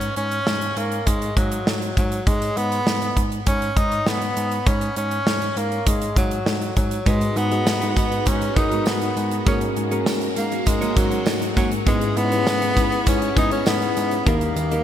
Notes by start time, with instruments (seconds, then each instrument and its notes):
Already playing: tenor saxophone C#4
0.01 closed hi-hat
0.16 tine electric piano G#2, tenor saxophone C#4, closed hi-hat
0.31 closed hi-hat
0.47 tine electric piano G#2, snare
0.61 closed hi-hat
0.77 tine electric piano G#2, tenor saxophone A#3, closed hi-hat
0.92 closed hi-hat
1.07 tine electric piano G#2, tenor saxophone G#3, kick, closed hi-hat
1.22 closed hi-hat
1.37 tine electric piano G#2, tenor saxophone F#3, kick, closed hi-hat
1.52 closed hi-hat
1.67 tine electric piano G#2, snare
1.82 closed hi-hat
1.97 tine electric piano G#2, tenor saxophone F#3, kick, closed hi-hat
2.12 closed hi-hat
2.27 tine electric piano G#2, tenor saxophone G#3, kick, closed hi-hat
2.42 closed hi-hat
2.57 tine electric piano G#2, tenor saxophone B3, closed hi-hat
2.72 closed hi-hat
2.87 tine electric piano G#2, snare
3.02 closed hi-hat
3.17 tine electric piano G#2, kick, closed hi-hat
3.32 closed hi-hat
3.47 tine electric piano G#2, tenor saxophone C#4, kick, closed hi-hat
3.62 closed hi-hat
3.77 tine electric piano G#2, tenor saxophone D#4, kick, closed hi-hat
3.92 closed hi-hat
4.06 tine electric piano G#2, tenor saxophone B3, snare
4.22 closed hi-hat
4.36 tine electric piano G#2, closed hi-hat
4.51 closed hi-hat
4.66 tine electric piano G#2, tenor saxophone C#4, kick, closed hi-hat
4.81 closed hi-hat
4.96 tine electric piano G#2, tenor saxophone C#4, closed hi-hat
5.11 closed hi-hat
5.27 tine electric piano G#2, snare
5.42 closed hi-hat
5.57 tine electric piano G#2, tenor saxophone A#3, closed hi-hat
5.72 closed hi-hat
5.87 tine electric piano G#2, tenor saxophone G#3, kick, closed hi-hat
6.02 closed hi-hat
6.16 tine electric piano G#2, tenor saxophone F#3, kick, closed hi-hat
6.31 closed hi-hat
6.46 tine electric piano G#2, snare
6.62 closed hi-hat
6.77 tine electric piano G#2, tenor saxophone F#3, kick, closed hi-hat
6.91 closed hi-hat
7.06 tine electric piano G#2 D#4 F#4 G#4 B4, clean electric guitar G#3 D#4 F#4 B4, string machine G#3 B3 D#4 F#4 A#5, tenor saxophone G#3, kick, closed hi-hat, tambourine
7.21 muted clean electric guitar stroke, closed hi-hat
7.36 tine electric piano G#2, clean electric guitar G#3 D#4 F#4 B4, tenor saxophone B3, closed hi-hat, tambourine
7.51 clean electric guitar G#3 D#4 F#4 B4, tine electric piano D#4 F#4 G#4 B4, closed hi-hat
7.66 tine electric piano G#2, snare, tambourine
7.81 clean electric guitar G#3 D#4 F#4 B4, closed hi-hat
7.96 tine electric piano G#2, tenor saxophone B3, muted clean electric guitar stroke, kick, closed hi-hat, tambourine
8.11 muted clean electric guitar stroke, closed hi-hat
8.26 tine electric piano G#2, tenor saxophone C#4, muted clean electric guitar stroke, kick, closed hi-hat, tambourine
8.41 muted clean electric guitar stroke, closed hi-hat
8.56 tine electric piano G#2 D#4 F#4 G#4 A#4, clean electric guitar G#3 D#4 F#4 B4, tenor saxophone D#4, kick, closed hi-hat, tambourine
8.71 clean electric guitar G#3 D#4 F#4 B4, closed hi-hat
8.86 tine electric piano G#2, tenor saxophone B3, muted clean electric guitar stroke, snare, tambourine
9.01 muted clean electric guitar stroke, closed hi-hat
9.17 tine electric piano G#2, closed hi-hat, tambourine
9.31 muted clean electric guitar stroke, closed hi-hat
9.46 tine electric piano G#2 C#4 F#4 G#4 A#4, clean electric guitar A#3 C#4 G#4 C#5, string machine A#3 F#4, tenor saxophone C#4, kick, closed hi-hat, tambourine
9.61 muted clean electric guitar stroke, closed hi-hat
9.76 tine electric piano G#2, muted clean electric guitar stroke, closed hi-hat
9.91 clean electric guitar A#3 C#4 G#4 C#5, tine electric piano C#4 F#4 G#4 A#4, closed hi-hat
10.06 tine electric piano G#2, muted clean electric guitar stroke, snare, tambourine
10.21 muted clean electric guitar stroke, closed hi-hat
10.36 tine electric piano G#2, tenor saxophone A#3, closed hi-hat, tambourine
10.52 muted clean electric guitar stroke, closed hi-hat
10.66 tine electric piano G#2, tenor saxophone G#3, muted clean electric guitar stroke, kick, closed hi-hat, tambourine
10.81 clean electric guitar A#3 C#4 G#4 C#5, tine electric piano C#4 F#4 G#4 A#4, closed hi-hat
10.96 tine electric piano G#2, tenor saxophone F#3, kick, closed hi-hat, tambourine
11.12 muted clean electric guitar stroke, closed hi-hat
11.26 tine electric piano G#2, muted clean electric guitar stroke, snare, tambourine
11.42 muted clean electric guitar stroke, closed hi-hat
11.56 tine electric piano G#2, tenor saxophone F#3, clean electric guitar A#3 C#4 G#4 C#5, kick, closed hi-hat, tambourine
11.71 muted clean electric guitar stroke, closed hi-hat
11.86 tine electric piano G#2 C#4 E4 G#4 B4, tenor saxophone G#3, clean electric guitar B3 E4 G#4 C#5, string machine C#4 E4, kick, closed hi-hat, tambourine
12.01 muted clean electric guitar stroke, closed hi-hat
12.16 tine electric piano G#2, clean electric guitar B3 E4 G#4 C#5, tenor saxophone B3, closed hi-hat
12.31 clean electric guitar B3 E4 G#4 C#5, tine electric piano C#4 E4 G4 B4, closed hi-hat
12.38 tine electric piano G#4
12.47 tine electric piano G#2, snare, tambourine
12.62 clean electric guitar B3 E4 G#4 C#5, closed hi-hat
12.77 tine electric piano G#2, muted clean electric guitar stroke, kick, closed hi-hat, tambourine
12.92 muted clean electric guitar stroke, closed hi-hat
13.06 tine electric piano G#2, tenor saxophone C#4, muted clean electric guitar stroke, kick, closed hi-hat, tambourine
13.22 muted clean electric guitar stroke, closed hi-hat
13.36 tine electric piano G#2 C#4 E4 G#4 B4, clean electric guitar B3 E4 G#4 C#5, tenor saxophone D#4, kick, closed hi-hat, tambourine
13.51 clean electric guitar B3 E4 G#4 C#5, tenor saxophone C#4, closed hi-hat
13.66 tine electric piano G#2, tenor saxophone B3, muted clean electric guitar stroke, snare, tambourine
13.82 muted clean electric guitar stroke, closed hi-hat
13.96 tine electric piano G#2, closed hi-hat, tambourine
14.11 muted clean electric guitar stroke, closed hi-hat
14.26 tine electric piano D#2 D#3 A#3 D#4 G4 A#4, string machine G3 A#3 D#4, tenor saxophone A#3, clean electric guitar D#4 G4 A#4 D#5, kick, closed hi-hat, tambourine
14.41 muted clean electric guitar stroke, closed hi-hat
14.56 tine electric piano D#2, muted clean electric guitar stroke, closed hi-hat, tambourine
14.71 tine electric piano A#3 D#4 G4 A#4, clean electric guitar D#4 G4 A#4 D#5, closed hi-hat